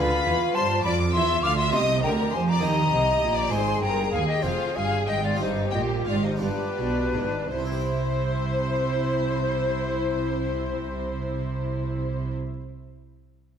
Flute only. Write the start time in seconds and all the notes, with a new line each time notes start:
Already playing: F5
0.55 A5
0.84 B5
1.13 C6
1.43 D6
1.57 C6
1.72 C6
2.04 G5
2.32 G#5
2.49 A#5
2.62 A#5
3.36 A#5
3.51 G#5
3.81 G5
4.12 F5
4.28 D#5
4.43 C5
4.76 F5
5.08 D#5
5.24 D5
5.40 C5
5.74 D#5
6.09 D5
6.25 C5
6.43 B4
7.51 C5